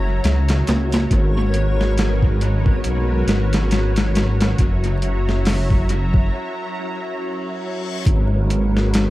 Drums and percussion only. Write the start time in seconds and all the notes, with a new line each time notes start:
0.24 snare, closed hi-hat
0.49 snare, closed hi-hat
0.67 snare, closed hi-hat
0.92 snare, closed hi-hat
1.11 kick, closed hi-hat
1.54 closed hi-hat
1.81 snare
1.98 snare, closed hi-hat
2.23 kick
2.41 closed hi-hat
2.66 kick
2.84 closed hi-hat
3.28 snare, closed hi-hat
3.53 snare, closed hi-hat
3.71 snare, closed hi-hat
3.96 snare, closed hi-hat
4.15 snare, closed hi-hat
4.41 snare, closed hi-hat
4.58 kick, closed hi-hat
4.84 closed hi-hat
5.02 closed hi-hat
5.29 snare
5.45 snare, open hi-hat
5.70 kick
5.89 closed hi-hat
6.14 kick
8.06 kick, closed hi-hat
8.50 closed hi-hat
8.77 snare
8.94 snare, closed hi-hat